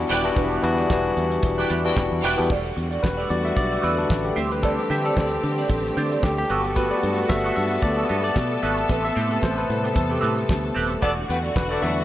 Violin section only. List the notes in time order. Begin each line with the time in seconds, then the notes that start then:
0.10 E4 D5 G5
1.58 E4 D5 G5
1.85 E4 D5 G5
2.23 E4 D5 G5